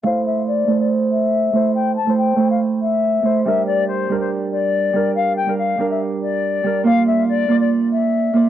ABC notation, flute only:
X:1
M:4/4
L:1/16
Q:1/4=141
K:Aphr
V:1 name="Flute"
f2 e2 d3 d z2 e6 | g2 a2 g3 f z2 e6 | e2 d2 c3 c z2 d6 | f2 g2 f3 e z2 d6 |
f2 e2 d3 d z2 e6 |]